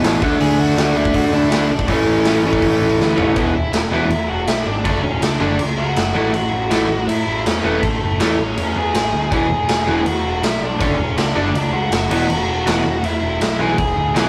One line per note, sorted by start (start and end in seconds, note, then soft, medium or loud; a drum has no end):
0.00 0.19 A1 medium
0.00 0.22 E2 medium
0.00 0.20 E2 medium
0.00 0.20 B2 medium
0.00 0.20 E3 medium
0.00 open hi-hat medium
0.05 0.21 B2 medium
0.05 0.21 E3 medium
0.05 snare loud
0.20 0.37 D2 medium
0.20 0.75 D3 loud
0.20 0.78 A3 loud
0.20 0.77 D4 loud
0.20 kick loud
0.40 0.55 D2 loud
0.40 0.58 G#4 medium
0.40 0.59 G#5 medium
0.40 open hi-hat medium
0.58 0.74 D2 loud
0.58 0.93 F#4 medium
0.58 0.97 F#5 loud
0.77 0.92 D2 loud
0.77 1.31 D3 medium
0.77 1.32 A3 medium
0.77 1.32 D4 medium
0.77 snare loud
0.77 open hi-hat medium
0.95 1.11 D2 medium
0.95 1.13 E4 medium
0.95 1.14 E5 loud
1.05 kick medium
1.14 1.30 D2 medium
1.14 1.32 F#4 medium
1.14 1.34 F#5 loud
1.14 kick loud
1.14 open hi-hat medium
1.32 1.47 D2 loud
1.32 1.70 D3 medium
1.32 1.69 A3 medium
1.32 1.69 D4 medium
1.32 1.68 E4 medium
1.32 1.72 E5 loud
1.50 1.66 D2 loud
1.50 1.68 D3 medium
1.50 1.69 A3 medium
1.50 snare loud
1.50 open hi-hat medium
1.54 1.70 D4 medium
1.69 1.85 B1 medium
1.69 1.87 D4 medium
1.69 1.90 D5 medium
1.79 kick loud
1.88 2.03 A1 loud
1.88 2.43 A2 loud
1.88 2.43 E3 medium
1.88 2.42 A3 loud
1.88 2.96 C#4 medium
1.88 3.00 C#5 medium
1.88 kick loud
1.88 open hi-hat medium
2.06 2.22 A1 medium
2.25 2.41 A1 medium
2.25 snare loud
2.25 open hi-hat medium
2.43 2.59 A1 loud
2.43 2.98 A2 medium
2.43 2.99 E3 medium
2.43 2.98 A3 loud
2.53 kick medium
2.62 2.78 A2 loud
2.62 kick medium
2.62 open hi-hat medium
2.80 2.96 A1 medium
2.99 3.14 D2 medium
2.99 3.35 A2 medium
2.99 3.36 E3 medium
2.99 3.37 A3 medium
2.99 snare medium
3.17 3.33 A1 medium
3.17 3.36 A2 medium
3.17 3.36 E3 medium
3.17 3.35 A3 medium
3.17 3.35 C#4 medium
3.17 3.36 C#5 medium
3.17 floor tom medium
3.36 3.53 E1 medium
3.36 3.51 E2 medium
3.36 3.51 B2 medium
3.36 3.52 E3 medium
3.36 3.53 B3 medium
3.36 3.55 B4 medium
3.36 kick loud
3.36 crash medium
3.54 3.71 E1 medium
3.54 3.72 E4 medium
3.54 3.72 E5 medium
3.73 3.90 E1 medium
3.73 3.79 E4 medium
3.73 3.78 E5 medium
3.73 snare loud
3.73 crash medium
3.91 4.08 E1 medium
3.91 4.07 E2 medium
3.91 4.07 B2 loud
3.91 4.08 E3 loud
3.91 4.28 E4 medium
3.91 4.29 E5 loud
4.09 4.26 E2 loud
4.09 crash soft
4.28 4.45 E1 medium
4.28 4.47 F#4 medium
4.28 4.48 F#5 medium
4.47 4.64 B1 medium
4.47 4.65 E4 medium
4.47 4.67 E5 medium
4.47 snare loud
4.47 crash medium
4.66 4.83 G#1 medium
4.66 5.02 D4 medium
4.66 5.03 D5 medium
4.85 5.01 F#1 loud
4.85 5.00 D3 medium
4.85 5.00 A3 medium
4.85 5.00 D4 medium
4.85 kick loud
4.85 crash medium
5.03 5.20 E1 medium
5.03 5.21 C#4 medium
5.03 5.22 C#5 medium
5.21 5.38 C#2 medium
5.21 5.57 D4 medium
5.21 5.60 D5 medium
5.21 snare loud
5.21 crash medium
5.40 5.57 F#1 medium
5.40 5.55 D3 medium
5.40 5.56 A3 medium
5.40 5.56 D4 loud
5.59 5.76 C#2 medium
5.59 crash medium
5.78 5.94 C#2 medium
5.78 6.30 F#4 medium
5.78 6.32 F#5 loud
5.96 6.12 F#1 medium
5.96 snare loud
5.96 crash medium
6.14 6.31 A1 medium
6.14 6.30 A2 loud
6.14 6.30 E3 medium
6.14 6.30 A3 medium
6.33 6.50 A1 medium
6.33 7.05 F#4 medium
6.33 7.04 F#5 loud
6.33 crash medium
6.52 6.69 A1 loud
6.70 6.87 A1 medium
6.70 6.86 A2 loud
6.70 6.86 E3 loud
6.70 6.86 A3 loud
6.70 snare loud
6.70 crash medium
6.89 7.05 A1 medium
7.08 7.24 A2 loud
7.08 7.43 E4 medium
7.08 7.42 E5 medium
7.08 crash medium
7.27 7.43 A1 medium
7.46 7.62 E2 medium
7.46 7.63 C#4 medium
7.46 7.63 C#5 medium
7.46 snare loud
7.46 crash medium
7.63 7.80 E1 medium
7.63 7.79 A2 medium
7.63 7.79 E3 medium
7.63 7.79 A3 loud
7.63 7.82 B3 medium
7.63 7.82 B4 medium
7.82 7.99 A1 medium
7.82 8.17 A3 medium
7.82 8.21 A4 medium
7.82 kick loud
7.82 crash medium
8.01 8.17 F#1 medium
8.19 8.36 E2 loud
8.19 8.35 A2 medium
8.19 8.35 E3 medium
8.19 8.36 A3 loud
8.19 8.54 C#4 medium
8.19 8.56 C#5 medium
8.19 snare loud
8.19 crash medium
8.38 8.54 A1 medium
8.57 8.73 E2 medium
8.57 8.75 C#4 medium
8.57 8.76 C#5 medium
8.57 crash medium
8.75 8.92 E2 medium
8.75 9.29 G#4 medium
8.75 9.32 G#5 loud
8.94 9.10 A1 medium
8.94 snare loud
8.94 crash medium
9.13 9.29 D2 medium
9.31 9.48 E1 medium
9.31 9.46 E2 loud
9.31 9.47 B2 medium
9.31 9.47 E3 medium
9.31 10.03 G#4 medium
9.31 10.09 G#5 loud
9.31 kick loud
9.31 crash medium
9.50 9.66 E1 medium
9.68 9.84 E1 medium
9.68 snare loud
9.68 crash medium
9.87 10.03 E1 medium
9.87 10.02 E2 loud
9.87 10.02 B2 loud
9.87 10.03 E3 loud
10.05 10.22 E2 loud
10.05 10.41 F#4 medium
10.05 10.44 F#5 medium
10.05 crash medium
10.24 10.40 E1 medium
10.42 10.59 B1 medium
10.42 10.61 E4 medium
10.42 10.63 E5 medium
10.42 snare loud
10.42 crash medium
10.61 10.82 B1 medium
10.61 10.80 D4 medium
10.61 10.81 D5 medium
10.79 10.97 F#1 medium
10.79 10.95 D3 medium
10.79 10.95 A3 medium
10.79 11.15 C#4 medium
10.79 10.95 D4 medium
10.79 11.15 C#5 medium
10.79 kick loud
10.79 crash medium
10.98 11.15 E1 medium
11.16 11.33 C#2 medium
11.16 11.52 D4 medium
11.16 11.54 D5 medium
11.16 snare loud
11.16 crash medium
11.35 11.52 F#1 medium
11.35 11.51 D3 medium
11.35 11.51 A3 loud
11.35 11.51 D4 loud
11.54 11.71 C#2 medium
11.54 11.73 D4 medium
11.54 11.74 D5 medium
11.54 crash medium
11.72 11.89 C#2 loud
11.72 12.25 F#4 medium
11.72 12.29 F#5 loud
11.91 12.08 F#1 medium
11.91 snare loud
11.91 crash medium
12.09 12.26 E1 medium
12.09 12.26 E2 medium
12.09 12.26 B2 medium
12.09 12.26 E3 loud
12.09 crash medium
12.29 12.45 E1 medium
12.29 13.00 F#4 medium
12.29 13.06 F#5 medium
12.29 crash medium
12.46 12.63 E1 medium
12.66 12.82 E1 loud
12.66 12.81 E2 medium
12.66 12.81 B2 medium
12.66 12.82 E3 loud
12.66 snare loud
12.66 crash medium
12.84 13.01 E1 medium
13.03 13.20 E2 loud
13.03 13.56 E4 medium
13.03 13.61 E5 medium
13.03 crash soft
13.21 13.38 E1 loud
13.40 13.56 B1 medium
13.40 snare loud
13.40 crash medium
13.59 13.75 B1 medium
13.59 13.74 E2 loud
13.59 13.75 B2 loud
13.59 13.75 E3 loud
13.59 14.29 G#4 medium
13.59 14.29 G#5 medium
13.78 13.95 E1 loud
13.78 kick loud
13.78 crash medium
13.96 14.13 D2 medium
14.15 14.29 B1 medium
14.15 14.29 E2 loud
14.15 14.29 B2 loud
14.15 14.29 E3 medium
14.15 snare loud
14.15 crash medium